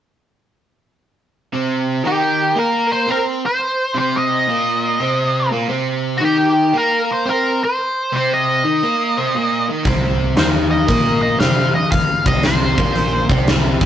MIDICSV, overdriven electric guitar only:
0, 0, Header, 1, 2, 480
1, 0, Start_track
1, 0, Key_signature, -3, "minor"
1, 0, Tempo, 519031
1, 1417, Time_signature, 4, 2, 24, 8
1, 12815, End_track
2, 0, Start_track
2, 0, Title_t, "Overdriven electric guitar"
2, 0, Program_c, 0, 29
2, 1416, Note_on_c, 0, 48, 82
2, 1426, Note_on_c, 0, 60, 86
2, 1882, Note_off_c, 0, 48, 0
2, 1886, Note_on_c, 0, 51, 75
2, 1890, Note_off_c, 0, 60, 0
2, 1894, Note_on_c, 0, 63, 75
2, 2364, Note_on_c, 0, 58, 74
2, 2368, Note_off_c, 0, 51, 0
2, 2372, Note_off_c, 0, 63, 0
2, 2372, Note_on_c, 0, 70, 85
2, 2842, Note_off_c, 0, 58, 0
2, 2846, Note_on_c, 0, 60, 77
2, 2849, Note_off_c, 0, 70, 0
2, 2853, Note_on_c, 0, 72, 82
2, 3162, Note_off_c, 0, 60, 0
2, 3165, Note_off_c, 0, 72, 0
2, 3646, Note_on_c, 0, 48, 77
2, 3656, Note_on_c, 0, 60, 84
2, 4125, Note_off_c, 0, 48, 0
2, 4130, Note_off_c, 0, 60, 0
2, 4140, Note_on_c, 0, 46, 85
2, 4147, Note_on_c, 0, 58, 94
2, 4612, Note_off_c, 0, 46, 0
2, 4615, Note_off_c, 0, 58, 0
2, 4624, Note_on_c, 0, 48, 70
2, 4627, Note_on_c, 0, 60, 88
2, 5094, Note_off_c, 0, 48, 0
2, 5096, Note_off_c, 0, 60, 0
2, 5103, Note_on_c, 0, 46, 72
2, 5112, Note_on_c, 0, 58, 81
2, 5257, Note_off_c, 0, 46, 0
2, 5260, Note_on_c, 0, 48, 87
2, 5262, Note_off_c, 0, 58, 0
2, 5265, Note_on_c, 0, 60, 102
2, 5735, Note_off_c, 0, 48, 0
2, 5739, Note_on_c, 0, 51, 73
2, 5741, Note_off_c, 0, 60, 0
2, 5748, Note_on_c, 0, 63, 87
2, 6218, Note_off_c, 0, 51, 0
2, 6223, Note_off_c, 0, 63, 0
2, 6224, Note_on_c, 0, 58, 83
2, 6231, Note_on_c, 0, 70, 92
2, 6701, Note_off_c, 0, 58, 0
2, 6704, Note_off_c, 0, 70, 0
2, 6712, Note_on_c, 0, 60, 78
2, 6717, Note_on_c, 0, 72, 84
2, 7017, Note_off_c, 0, 60, 0
2, 7020, Note_off_c, 0, 72, 0
2, 7513, Note_on_c, 0, 48, 76
2, 7518, Note_on_c, 0, 60, 87
2, 7979, Note_off_c, 0, 48, 0
2, 7981, Note_off_c, 0, 60, 0
2, 7995, Note_on_c, 0, 51, 83
2, 8001, Note_on_c, 0, 63, 89
2, 8147, Note_off_c, 0, 51, 0
2, 8150, Note_off_c, 0, 63, 0
2, 8165, Note_on_c, 0, 58, 75
2, 8170, Note_on_c, 0, 70, 89
2, 8463, Note_off_c, 0, 58, 0
2, 8465, Note_off_c, 0, 70, 0
2, 8477, Note_on_c, 0, 48, 66
2, 8482, Note_on_c, 0, 60, 85
2, 8628, Note_off_c, 0, 48, 0
2, 8630, Note_off_c, 0, 60, 0
2, 8646, Note_on_c, 0, 46, 69
2, 8653, Note_on_c, 0, 58, 78
2, 8943, Note_off_c, 0, 46, 0
2, 8947, Note_off_c, 0, 58, 0
2, 8961, Note_on_c, 0, 51, 75
2, 8967, Note_on_c, 0, 63, 82
2, 9109, Note_off_c, 0, 51, 0
2, 9112, Note_off_c, 0, 63, 0
2, 9115, Note_on_c, 0, 48, 85
2, 9121, Note_on_c, 0, 60, 103
2, 9583, Note_off_c, 0, 48, 0
2, 9586, Note_on_c, 0, 51, 73
2, 9587, Note_off_c, 0, 60, 0
2, 9592, Note_on_c, 0, 63, 85
2, 10059, Note_off_c, 0, 51, 0
2, 10062, Note_off_c, 0, 63, 0
2, 10062, Note_on_c, 0, 58, 81
2, 10064, Note_on_c, 0, 70, 92
2, 10533, Note_off_c, 0, 58, 0
2, 10537, Note_off_c, 0, 70, 0
2, 10537, Note_on_c, 0, 60, 74
2, 10541, Note_on_c, 0, 72, 91
2, 10846, Note_off_c, 0, 60, 0
2, 10848, Note_off_c, 0, 72, 0
2, 11335, Note_on_c, 0, 48, 75
2, 11344, Note_on_c, 0, 60, 88
2, 11803, Note_off_c, 0, 48, 0
2, 11808, Note_off_c, 0, 60, 0
2, 11820, Note_on_c, 0, 46, 83
2, 11826, Note_on_c, 0, 58, 88
2, 12285, Note_off_c, 0, 46, 0
2, 12288, Note_off_c, 0, 58, 0
2, 12291, Note_on_c, 0, 48, 82
2, 12293, Note_on_c, 0, 60, 85
2, 12760, Note_off_c, 0, 48, 0
2, 12761, Note_off_c, 0, 60, 0
2, 12767, Note_on_c, 0, 46, 77
2, 12771, Note_on_c, 0, 58, 90
2, 12815, Note_off_c, 0, 46, 0
2, 12815, Note_off_c, 0, 58, 0
2, 12815, End_track
0, 0, End_of_file